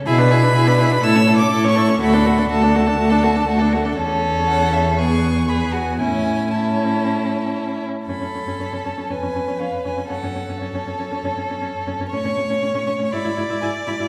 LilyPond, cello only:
\new Staff \with { instrumentName = "Cello" } { \clef bass \time 4/4 \key a \major \tempo 4 = 119 b,4 b,4 a,4 a,4 | d,4 d,4 d,4 d,4 | e,1 | a,2.~ a,8 r8 |
\key fis \minor fis,16 fis,16 fis,16 fis,16 fis,16 fis,16 fis,16 fis,16 eis,16 eis,16 eis,16 eis,16 eis,16 r16 eis,16 eis,16 | fis,16 fis,16 fis,16 fis,16 fis,16 fis,16 fis,16 fis,16 fis,16 fis,16 fis,16 fis,16 fis,16 r16 fis,16 fis,16 | a,16 a,16 a,16 a,16 a,16 a,16 a,16 a,16 gis,16 gis,16 gis,16 gis,16 gis,16 r16 gis,16 gis,16 | }